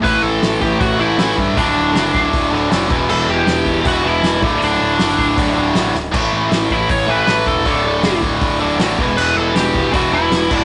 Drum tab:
CC |--------|--------|x-------|--------|
HH |o-o-o-o-|o-o-o-o-|--o-o-o-|o-o-o-o-|
SD |--o---o-|--o---o-|--o---o-|--o---oo|
BD |o--oo--o|o--oo--o|---oo--o|---oo---|

CC |x-------|--------|x------x|
HH |--o-o-o-|o-o-o-o-|--o-o-o-|
SD |--o---o-|--o---o-|--o---o-|
BD |o--oo--o|o--oo--o|---oo--o|